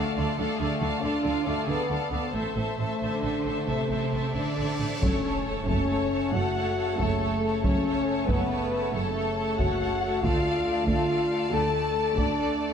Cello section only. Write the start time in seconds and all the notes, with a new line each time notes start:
0.17 D3
0.38 D3
0.59 D3
0.81 D3
1.02 D3
1.24 D3
1.45 D3
1.67 D3
1.89 D3
2.11 D3
2.33 A2
2.55 A2
2.77 A2
2.99 D3
3.66 C3
4.34 D3
5.01 F#2
5.66 F#2
6.33 F#2
6.98 F#2
7.63 F#2
8.28 F#2
8.93 F#2
9.58 F#2
10.23 D2
10.87 D2
11.51 D2
12.16 D2